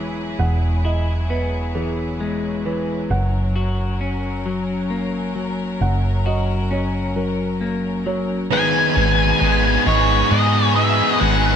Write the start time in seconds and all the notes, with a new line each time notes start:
Already playing: E1 E3 F#3 G#3 B3 E4 G#4
0.39 E1 E2 F#5
0.85 E4 D#5
1.30 B3 B4
1.75 E3 G#4
2.20 G#3
2.65 E3 B4
3.10 F#1 F#2 C#4 A#4 F#5
3.56 F#4
4.01 C#4
4.46 F#3
4.90 A#3
5.35 F#3
5.81 F#1 F#2 F#5
6.26 F#4 D#5
6.71 C#4 C#5
7.16 F#3 A#4
7.61 A#3
8.06 F#3 C#5
8.51 G#1 G#2 D#3 G#3 B3 D#4 F#4 G#4 B4 G#5
8.95 G#1 G#3 B3 D#4 G#4
9.41 G#1 G#3 B3 D#4 G#4
9.86 G#1 G#3 B3 D#4 G#4 C#5 D#5
10.31 G#2 G#3 B3 D#4 G#4 D#5
10.76 G#3 B3 D#4 G#4 E5 D#6
11.20 G#1 G#2 D#3 G#3 B3 D#4 G#4 F#5